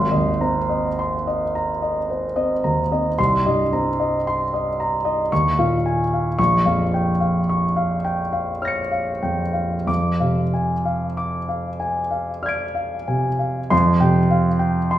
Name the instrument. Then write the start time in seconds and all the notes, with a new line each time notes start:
grand piano
Already playing: G#1 C6
0.11 D#2 D#5
0.41 C4 A#5
0.69 D#5
0.99 C6
1.27 D#5
1.55 A#5
1.82 D#5
2.10 C5
2.36 C4 D#5
2.64 D#2 A#5
2.92 C4 D#5
3.18 C2 C6
3.46 G2 D#5
3.73 C4 A#5
4.00 D#5
4.27 C6
4.54 D#5
4.80 A#5
5.05 D#5
5.32 D#2 C#6
5.59 A#2 F5
5.86 G#5
6.13 F5
6.39 A#1 C#6
6.65 F2 F5
6.94 G5
7.20 F5
7.49 C#6
7.76 F5
8.05 G5
8.33 F5
8.62 C#5 F6 A#6
8.68 C#7
8.92 F5
9.23 F2 G5
9.53 F5
9.87 F2 D6
10.20 C3 F5
10.54 G#5
10.85 F5
11.17 D6
11.49 F5
11.80 G#5
12.11 F5
12.43 D5 F6 G#6
12.49 D7
12.75 F5
13.08 C3 G#5
13.39 F5
13.70 F2 C6
14.00 C3 G5
14.31 F5
14.59 G5
14.91 C6